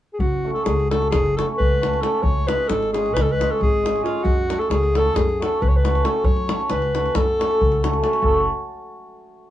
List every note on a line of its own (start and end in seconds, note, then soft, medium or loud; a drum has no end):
0.13 0.21 G#4 medium
0.19 0.48 F#1 medium
0.19 0.53 F#4 medium
0.19 davul low medium
0.45 0.59 A3 medium
0.45 0.59 C#4 soft
0.45 0.60 F#4 soft
0.45 0.60 A4 medium
0.53 0.66 A4 medium
0.53 davul high soft
0.65 1.14 C#2 medium
0.65 0.90 G#4 medium
0.65 davul high medium
0.80 davul high soft
0.90 1.05 A3 soft
0.90 1.05 C#4 soft
0.90 1.06 F#4 soft
0.90 1.10 A4 medium
0.90 1.06 A4 medium
0.90 davul high medium
1.02 davul high soft
1.10 1.40 F#1 medium
1.10 1.35 G#4 loud
1.10 davul high medium
1.10 davul low medium
1.26 davul high soft
1.37 1.52 A3 medium
1.37 1.52 C#4 medium
1.37 1.53 F#4 soft
1.37 1.46 A4 medium
1.37 1.53 A4 medium
1.37 davul high medium
1.58 1.98 C#2 medium
1.58 2.03 B4 medium
1.58 davul low medium
1.81 1.95 A3 medium
1.81 1.95 C#4 soft
1.81 1.95 F#4 soft
1.81 1.96 A4 medium
1.81 davul high medium
1.94 davul high soft
2.01 2.15 A3 medium
2.01 2.15 C#4 medium
2.01 2.16 F#4 medium
2.01 2.24 A4 medium
2.01 2.16 A4 medium
2.01 davul high medium
2.23 2.51 C#2 medium
2.23 2.49 C#5 loud
2.23 davul low medium
2.46 2.91 G#3 soft
2.46 2.62 C#4 soft
2.46 2.62 F4 soft
2.46 2.62 G#4 medium
2.46 2.70 B4 medium
2.46 davul high medium
2.68 3.16 G#1 medium
2.68 2.93 A4 medium
2.68 davul high medium
2.83 davul high soft
2.93 3.38 G#3 medium
2.93 3.08 C#4 soft
2.93 3.08 F4 soft
2.93 3.15 G#4 medium
2.93 3.08 G#4 medium
2.93 davul high medium
3.06 davul high soft
3.14 3.43 C#2 medium
3.14 3.23 B4 loud
3.14 davul high medium
3.14 davul low medium
3.22 3.33 A4 medium
3.29 3.52 B4 medium
3.29 davul high soft
3.39 3.82 G#3 medium
3.39 3.54 C#4 medium
3.39 3.54 F4 medium
3.39 3.54 G#4 medium
3.39 davul high medium
3.51 3.61 A4 medium
3.61 3.99 G#1 medium
3.61 4.05 G#4 medium
3.61 davul low medium
3.83 4.02 G#3 medium
3.83 3.97 C#4 soft
3.83 3.98 F4 soft
3.83 3.98 G#4 medium
3.83 davul high medium
3.96 davul high soft
4.03 4.29 G#3 medium
4.03 4.17 C#4 medium
4.03 4.25 F4 medium
4.03 4.18 F4 medium
4.03 4.18 G#4 medium
4.03 davul high soft
4.23 4.52 F#2 medium
4.23 4.61 F#4 loud
4.23 davul low medium
4.48 4.62 A3 medium
4.48 4.63 C#4 soft
4.48 4.63 F#4 soft
4.48 4.63 A4 medium
4.48 davul high medium
4.60 4.71 A4 medium
4.60 davul high soft
4.70 5.16 C#2 medium
4.70 4.98 G#4 medium
4.70 davul high medium
4.83 davul high soft
4.94 5.08 A3 medium
4.94 5.08 C#4 soft
4.94 5.09 F#4 soft
4.94 5.09 A4 medium
4.94 5.18 A4 loud
4.94 davul high medium
5.06 davul high soft
5.16 5.43 F#2 medium
5.16 5.41 G#4 medium
5.16 davul high medium
5.16 davul low medium
5.29 davul high soft
5.40 5.54 A3 medium
5.40 5.54 C#4 soft
5.40 5.55 F#4 soft
5.40 5.55 A4 medium
5.40 5.64 A4 medium
5.40 davul high medium
5.62 5.99 C#2 medium
5.62 5.70 B4 medium
5.62 davul low medium
5.69 5.78 C#5 medium
5.76 6.07 B4 medium
5.84 5.97 A3 soft
5.84 5.97 C#4 medium
5.84 5.98 F#4 soft
5.84 5.98 A4 medium
5.84 davul high medium
5.95 davul high soft
6.04 6.17 A3 medium
6.04 6.17 C#4 medium
6.04 6.18 F#4 medium
6.04 6.27 A4 medium
6.04 6.18 A4 medium
6.04 davul high medium
6.24 6.51 F#2 medium
6.24 6.64 C#5 loud
6.24 davul low medium
6.37 davul high soft
6.48 6.62 A3 soft
6.48 6.62 C#4 soft
6.48 6.63 F#4 soft
6.48 6.63 A4 medium
6.48 davul high medium
6.60 davul high soft
6.64 6.72 C#5 medium
6.70 7.16 C#2 medium
6.70 7.17 B4 medium
6.70 davul high medium
6.82 davul high soft
6.94 7.08 A3 soft
6.94 7.08 C#4 soft
6.94 7.08 F#4 soft
6.94 7.09 A4 medium
6.94 davul high medium
7.06 davul high soft
7.15 7.43 F#2 medium
7.15 8.03 A4 medium
7.15 davul high medium
7.15 davul low medium
7.28 davul high soft
7.39 7.53 A3 medium
7.39 7.53 C#4 medium
7.39 7.54 F#4 soft
7.39 7.54 A4 medium
7.39 davul high medium
7.51 davul high soft
7.61 7.98 C#2 medium
7.61 davul low medium
7.72 davul high soft
7.83 7.96 A3 medium
7.83 7.96 C#4 medium
7.83 7.96 F#4 medium
7.83 7.96 A4 medium
7.83 davul high medium
7.93 davul high soft
8.02 8.16 A3 medium
8.02 8.15 C#4 medium
8.02 8.16 F#4 medium
8.02 8.16 A4 medium
8.02 davul high soft
8.13 davul high soft
8.21 8.46 F#1 medium
8.21 8.45 A3 medium
8.21 8.45 C#4 medium
8.21 8.45 F#4 medium
8.21 8.45 A4 medium
8.21 davul low medium